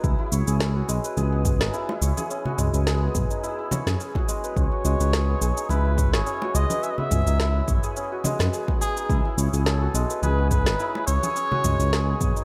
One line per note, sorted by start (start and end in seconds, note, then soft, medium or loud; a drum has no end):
0.00 0.14 C#2 loud
0.00 1.32 B3 medium
0.00 0.60 C#4 medium
0.00 0.19 E4 loud
0.00 0.75 F#4 medium
0.00 0.47 G#4 medium
0.00 1.04 B4 medium
0.00 0.32 C#5 medium
0.00 kick loud
0.04 shaker soft
0.19 1.67 E4 medium
0.19 high conga soft
0.32 0.43 C#2 medium
0.32 2.01 C#5 medium
0.32 shaker medium
0.47 0.82 C#2 loud
0.47 1.17 G#4 medium
0.47 shaker soft
0.61 2.30 C#4 medium
0.61 snare medium
0.61 shaker soft
0.76 2.45 F#4 medium
0.89 0.99 B1 medium
0.89 2.57 G#3 loud
0.89 shaker medium
1.04 2.73 B4 medium
1.04 shaker soft
1.17 1.62 C#2 medium
1.17 1.45 G#4 loud
1.17 high conga medium
1.17 shaker soft
1.32 3.02 B3 medium
1.45 2.17 G#4 medium
1.45 kick loud
1.45 mid tom medium
1.45 shaker medium
1.60 1.69 G#1 medium
1.60 1.80 D#4 medium
1.60 snare medium
1.60 shaker soft
1.74 1.89 E4 medium
1.74 shaker soft
1.89 3.36 E4 medium
1.89 high bongo medium
2.02 2.12 C#2 medium
2.02 3.71 C#5 medium
2.02 shaker medium
2.17 2.86 G#4 loud
2.17 high conga medium
2.17 shaker soft
2.30 4.00 C#4 medium
2.30 shaker soft
2.45 4.15 F#4 medium
2.45 low conga medium
2.58 2.69 C#2 medium
2.58 4.27 G#3 loud
2.58 mid tom medium
2.58 high bongo medium
2.58 shaker medium
2.74 3.09 C#2 loud
2.74 4.43 B4 medium
2.74 high bongo soft
2.74 shaker soft
2.87 3.15 G#4 loud
2.87 snare medium
2.87 shaker soft
3.02 5.28 B3 medium
3.15 3.26 B1 medium
3.15 3.87 G#4 medium
3.15 kick loud
3.15 mid tom medium
3.15 shaker medium
3.30 3.49 D#4 medium
3.30 shaker soft
3.43 3.58 E4 loud
3.43 shaker soft
3.59 5.63 E4 medium
3.71 5.97 C#5 medium
3.71 high conga medium
3.71 low conga medium
3.71 shaker medium
3.87 3.96 F#2 loud
3.87 5.13 G#4 loud
3.87 snare medium
3.87 high conga medium
3.87 shaker soft
4.00 4.56 C#4 medium
4.00 shaker soft
4.15 4.72 F#4 medium
4.15 kick loud
4.15 high bongo medium
4.15 high conga soft
4.28 4.62 G#3 loud
4.28 high bongo soft
4.28 shaker medium
4.44 5.00 B4 medium
4.44 shaker soft
4.56 4.67 C#2 loud
4.56 6.26 C#4 medium
4.56 5.66 C#5 medium
4.56 kick loud
4.56 shaker soft
4.72 6.41 F#4 medium
4.72 high conga soft
4.85 4.95 C#2 medium
4.85 6.54 G#3 medium
4.85 shaker medium
5.00 5.35 C#2 loud
5.00 6.70 B4 medium
5.00 shaker soft
5.13 5.41 G#4 medium
5.13 snare medium
5.13 shaker soft
5.29 6.98 B3 medium
5.41 5.52 B1 medium
5.41 6.13 G#4 medium
5.41 shaker medium
5.57 5.76 D#4 medium
5.57 shaker soft
5.69 6.15 C#2 medium
5.69 5.85 E4 loud
5.69 6.15 B4 medium
5.69 high conga medium
5.69 shaker soft
5.85 7.33 E4 medium
5.98 7.68 C#5 medium
5.98 kick loud
5.98 mid tom medium
5.98 shaker medium
6.13 6.22 G#1 medium
6.13 6.83 G#4 loud
6.13 6.57 C#5 medium
6.13 snare medium
6.13 shaker soft
6.26 7.96 C#4 medium
6.26 shaker soft
6.42 8.11 F#4 medium
6.42 high bongo medium
6.55 6.65 C#2 medium
6.55 8.23 G#3 loud
6.55 6.84 D#5 loud
6.55 shaker medium
6.70 8.40 B4 medium
6.70 high conga medium
6.70 shaker soft
6.83 7.11 G#4 medium
6.83 6.92 E5 medium
6.83 shaker soft
6.91 7.00 D#5 medium
6.98 8.68 B3 medium
6.98 7.96 E5 loud
6.98 low conga medium
7.11 7.22 C#2 loud
7.11 7.83 G#4 medium
7.11 mid tom medium
7.11 high bongo medium
7.11 shaker medium
7.27 7.62 C#2 loud
7.27 7.46 D#4 medium
7.27 high bongo soft
7.27 shaker soft
7.40 7.55 E4 loud
7.40 snare medium
7.40 shaker soft
7.55 9.03 E4 medium
7.68 7.78 B1 medium
7.68 9.38 C#5 medium
7.68 kick medium
7.68 mid tom medium
7.68 shaker medium
7.83 8.53 G#4 loud
7.83 shaker soft
7.96 9.66 C#4 medium
7.96 shaker soft
8.12 9.81 F#4 medium
8.24 9.15 G#3 loud
8.24 high conga medium
8.24 low conga medium
8.24 shaker medium
8.39 8.49 F#2 loud
8.39 10.10 B4 medium
8.39 snare medium
8.39 high conga medium
8.39 shaker soft
8.53 8.81 G#4 medium
8.53 shaker soft
8.68 10.38 B3 medium
8.68 kick loud
8.68 high bongo medium
8.68 high conga soft
8.81 9.53 G#4 medium
8.81 9.34 G#4 loud
8.81 high bongo soft
8.81 shaker medium
8.97 9.16 D#4 medium
8.97 shaker soft
9.09 9.20 C#2 medium
9.09 9.25 E4 loud
9.09 kick loud
9.09 shaker soft
9.25 10.73 E4 medium
9.25 high conga soft
9.37 9.48 C#2 loud
9.37 11.07 C#5 medium
9.37 shaker medium
9.53 9.88 C#2 loud
9.53 10.23 G#4 medium
9.53 shaker soft
9.66 11.36 C#4 medium
9.66 10.19 A4 medium
9.66 snare medium
9.66 shaker soft
9.82 11.51 F#4 medium
9.94 10.05 B1 medium
9.94 11.63 G#3 loud
9.94 shaker medium
10.10 11.79 B4 medium
10.10 shaker soft
10.22 10.68 C#2 medium
10.22 10.51 G#4 loud
10.22 10.49 B4 loud
10.22 high conga medium
10.22 shaker soft
10.39 12.08 B3 medium
10.50 11.23 G#4 medium
10.50 11.03 B4 loud
10.50 kick medium
10.50 mid tom medium
10.50 shaker medium
10.66 10.75 G#1 medium
10.66 10.86 D#4 medium
10.66 snare medium
10.66 shaker soft
10.80 10.95 E4 medium
10.80 shaker soft
10.95 12.42 E4 medium
10.95 high bongo medium
11.07 11.18 C#2 medium
11.07 12.44 C#5 loud
11.07 12.44 C#5 medium
11.07 shaker medium
11.23 11.92 G#4 loud
11.23 high conga medium
11.23 shaker soft
11.36 12.44 C#4 medium
11.36 shaker soft
11.51 12.44 F#4 medium
11.51 high conga soft
11.51 low conga medium
11.64 11.75 C#2 loud
11.64 12.44 G#3 loud
11.64 mid tom medium
11.64 high bongo medium
11.64 shaker medium
11.80 12.14 C#2 loud
11.80 12.44 B4 medium
11.80 high bongo soft
11.80 shaker soft
11.93 12.21 G#4 loud
11.93 snare medium
11.93 shaker soft
12.08 12.44 B3 medium
12.21 12.31 B1 medium
12.21 12.44 G#4 medium
12.21 kick loud
12.21 mid tom medium
12.21 shaker medium
12.36 12.44 D#4 medium
12.36 shaker soft